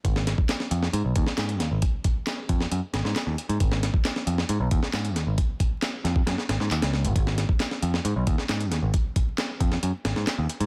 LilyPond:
<<
  \new Staff \with { instrumentName = "Picked electric bass" } { \clef bass \time 4/4 \key gis \dorian \tempo 4 = 135 gis,,8. r8. eis,16 r16 gis,16 b,,16 dis,16 r16 gis,8 dis,16 gis,,16 | r4. eis,16 r16 fis,16 r16 gis,,16 gis,16 r16 dis,16 r16 gis,16 | gis,,8. r8. eis,16 r16 gis,16 b,,16 dis,16 r16 gis,8 dis,16 gis,,16 | r4. eis,16 r16 fis,16 r16 gis,,16 gis,16 dis,16 cis,8 gis,,16 |
gis,,8. r8. eis,16 r16 gis,16 b,,16 dis,16 r16 gis,8 dis,16 gis,,16 | r4. eis,16 r16 fis,16 r16 gis,,16 gis,16 r16 dis,16 r16 gis,16 | }
  \new DrumStaff \with { instrumentName = "Drums" } \drummode { \time 4/4 <hh bd>16 sn16 <hh sn>16 bd16 <hc hh sn>16 sn16 hh16 sn16 hh8 <hh bd>16 sn16 <hc hh sn>16 hh16 <hh sn>8 | <hh bd>8 <hh bd>8 <hc hh sn>8 <hh bd>16 sn16 hh8 <hh sn>16 sn16 <hc hh sn>8 hh16 hh16 | <hh bd>16 sn16 <hh sn>16 bd16 <hc hh sn>16 sn16 hh16 sn16 hh8 <hh bd>16 sn16 <hc hh sn>16 hh16 <hh sn>8 | <hh bd>8 <hh bd>8 <hc hh sn>8 <hh sn>16 bd16 <hh sn>16 sn16 <hh sn>16 sn16 <hc hh>16 <hh sn>16 sn16 hh16 |
<hh bd>16 sn16 <hh sn>16 bd16 <hc hh sn>16 sn16 hh16 sn16 hh8 <hh bd>16 sn16 <hc hh sn>16 hh16 <hh sn>8 | <hh bd>8 <hh bd>8 <hc hh sn>8 <hh bd>16 sn16 hh8 <hh sn>16 sn16 <hc hh sn>8 hh16 hh16 | }
>>